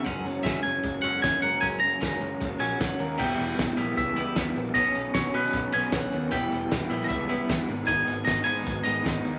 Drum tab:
CC |----------------|----------------|x---------------|----------------|
HH |x-x-x-x-x-x-x-x-|x-x-x-x-x-x-x-x-|--x-x-x-x-x-x-x-|x-x-x-x-x-x-x-x-|
SD |----o-------o---|----o-------o---|----o-------o---|----o--o----o---|
BD |o---o---o---o---|o---o---o---o---|o---o---o---o---|o---o---o---o---|

CC |----------------|----------------|
HH |x-x-x-x-x-x-x-x-|x-x-x-x-x-x-x-x-|
SD |----o--o----o---|----o--o----o---|
BD |o---o---o---o---|o---o---o---o---|